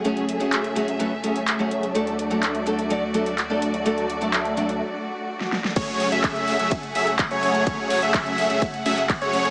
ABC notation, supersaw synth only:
X:1
M:4/4
L:1/16
Q:1/4=126
K:F#m
V:1 name="Supersaw synth"
[F,A,CGc]3 [F,A,CGe]4 [F,A,CGe] z2 [F,A,CGe] z2 [F,A,CGc]3 | [F,A,DAd]3 [F,A,DAe]4 [F,A,DAe] z2 [F,A,DAe] z2 [F,A,DAd]3 | [F,A,DAd]3 [F,A,DAe]4 [F,A,DAe] z8 | [F,A,CGc]3 [F,A,CGe]4 [F,A,CGe] z2 [F,A,CGe] z2 [F,A,CGc]3 |
[F,A,Cc]3 [F,A,CGe]4 [F,A,CGe] z2 [F,A,CGe] z2 [F,A,CGc]3 |]